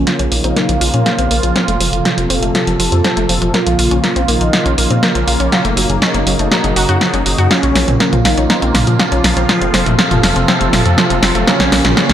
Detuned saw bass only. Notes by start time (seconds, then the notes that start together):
0.19 A#1
0.32 A#1
0.44 A#1
0.69 A#1
0.81 A#1
0.94 A#2
1.19 A#1
1.31 A#1
1.43 A#1
1.68 F1
1.80 F1
1.93 F1
2.18 F1
2.30 F1
2.43 F1
2.67 F1
2.80 F1
2.92 F2
3.17 F1
3.29 F1
3.42 F1
3.67 A#1
3.79 A#1
3.91 A#1
4.16 A#1
4.28 A#1
4.41 A#1
4.66 A#1
4.78 A#1
4.91 A#2
5.15 A#1
5.28 A#1
5.40 A#1
5.65 F#1
5.77 F#1
5.90 F#1
6.14 F#1
6.27 F#1
6.39 F#1
6.64 F#1
6.76 F#1
6.89 F#2
7.14 F#1
7.26 F#1
7.38 F#2
7.63 A#1
7.76 A#1
7.88 A#1
8.13 A#1
8.25 A#1
8.38 A#1
8.62 A#1
8.75 A#1
8.87 A#2
9.12 A#1
9.24 A#1
9.37 A#1
9.62 F1
9.74 F1
9.86 F1
10.11 F1
10.24 F1
10.36 F1
10.61 F1
10.73 F1
10.86 F2
11.10 F1
11.23 F1
11.35 F1
11.60 A#1
11.72 A#1
11.85 A#1
12.10 A#1